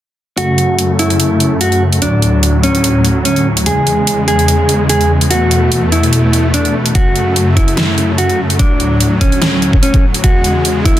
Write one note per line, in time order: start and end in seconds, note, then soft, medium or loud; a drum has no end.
0.37 2.00 F#2 medium
0.37 2.00 C#3 medium
0.37 2.00 A3 medium
0.37 0.92 F#4 medium
0.37 closed hi-hat medium
0.58 closed hi-hat soft
0.79 closed hi-hat medium
0.99 1.53 E4 medium
0.99 closed hi-hat medium
1.10 closed hi-hat soft
1.20 closed hi-hat medium
1.40 closed hi-hat medium
1.61 1.82 F#4 medium
1.61 closed hi-hat medium
1.72 closed hi-hat soft
1.93 closed hi-hat medium
2.02 3.65 D2 medium
2.02 3.65 A2 medium
2.02 3.65 F#3 medium
2.02 2.56 D4 medium
2.02 closed hi-hat medium
2.22 closed hi-hat medium
2.43 closed hi-hat medium
2.63 3.18 C#4 medium
2.63 closed hi-hat medium
2.75 closed hi-hat soft
2.84 closed hi-hat medium
3.05 closed hi-hat medium
3.25 3.47 C#4 medium
3.25 closed hi-hat medium
3.36 closed hi-hat soft
3.57 closed hi-hat medium
3.66 6.92 E2 medium
3.66 5.29 C#3 medium
3.66 5.29 G#3 medium
3.66 4.20 G#4 medium
3.66 closed hi-hat medium
3.87 closed hi-hat soft
4.07 closed hi-hat medium
4.28 4.82 G#4 medium
4.28 closed hi-hat soft
4.39 closed hi-hat soft
4.48 closed hi-hat medium
4.69 closed hi-hat medium
4.89 5.11 G#4 medium
4.89 closed hi-hat medium
5.01 closed hi-hat soft
5.21 closed hi-hat medium
5.30 6.93 B2 medium
5.30 6.93 A3 medium
5.30 5.85 F#4 medium
5.30 closed hi-hat medium
5.51 closed hi-hat soft
5.72 closed hi-hat medium
5.92 6.46 E4 medium
5.92 closed hi-hat soft
6.03 closed hi-hat soft
6.13 closed hi-hat medium
6.33 closed hi-hat soft
6.54 6.75 D4 medium
6.54 closed hi-hat medium
6.65 closed hi-hat soft
6.86 closed hi-hat medium
6.95 8.58 F#2 medium
6.95 8.58 C#3 medium
6.95 8.58 A3 medium
6.95 7.49 F#4 medium
6.95 kick loud
6.95 closed hi-hat medium
7.16 closed hi-hat soft
7.36 closed hi-hat medium
7.57 8.11 E4 medium
7.57 kick medium
7.57 closed hi-hat soft
7.68 closed hi-hat soft
7.77 snare loud
7.77 closed hi-hat medium
7.98 closed hi-hat soft
8.18 8.40 F#4 medium
8.18 closed hi-hat medium
8.29 closed hi-hat soft
8.50 closed hi-hat medium
8.59 10.22 A2 medium
8.59 9.13 D4 medium
8.59 kick loud
8.59 closed hi-hat medium
8.80 closed hi-hat soft
9.01 closed hi-hat medium
9.21 9.75 C#4 medium
9.21 kick medium
9.21 closed hi-hat soft
9.32 closed hi-hat soft
9.42 snare loud
9.42 closed hi-hat medium
9.62 closed hi-hat soft
9.73 kick medium
9.83 10.04 C#4 medium
9.83 closed hi-hat medium
9.94 kick medium
9.94 closed hi-hat soft
10.14 closed hi-hat medium
10.24 11.00 E2 medium
10.24 11.00 C#3 medium
10.24 11.00 G#3 medium
10.24 10.78 F#4 medium
10.24 kick loud
10.24 closed hi-hat medium
10.44 closed hi-hat soft
10.65 closed hi-hat medium
10.85 11.00 E4 medium
10.85 kick medium
10.85 closed hi-hat soft
10.97 closed hi-hat soft